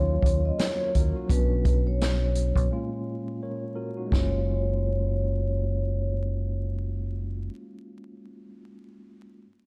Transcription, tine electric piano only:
Already playing: D#2 F#3 A#3 C#4 F4 A#4 C#5
0.58 F#4 A#4
0.81 A#4 C#5
0.95 F#4 A#4
1.16 D#4 F#4
1.28 F#3 B3 C#4 D4
2.70 A#2 G#3 A#3 C#4 F4
3.43 A#4 C#5
3.76 F#4 A#4
3.97 D#4 F#4
4.06 G#3
4.10 A#3
4.14 C#4
4.19 F4

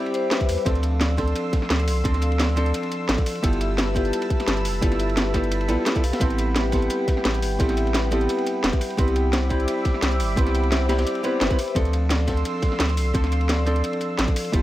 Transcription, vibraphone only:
Already playing: G4 C5 G5
0.14 C5
0.31 B4
0.49 E5
0.66 A4
0.83 F5
1.01 D5
1.18 A4
1.70 A4
2.05 A4
2.22 F5
2.40 D5
2.57 A4
3.09 A4
3.44 G4
3.61 E5
3.78 B4
3.96 G4
4.48 G4
4.82 G4
5.00 E5
5.17 B4
5.34 G4
5.86 A4
6.04 F5
6.21 G4
6.38 E5
6.56 B4
6.73 G4
7.25 G4
7.60 G4
7.77 E5
7.94 B4
8.12 G4
8.64 G4
8.98 G4
9.16 G5
9.33 C5
9.50 G4
10.02 G4
10.37 G4
10.55 G5
10.72 C5
10.89 G4
11.24 C5
11.41 B4
11.59 E5
11.76 A4
11.93 F5
12.11 D5
12.28 A4
12.80 A4
13.14 A4
13.32 F5
13.49 D5
13.67 A4
14.19 A4
14.53 G4

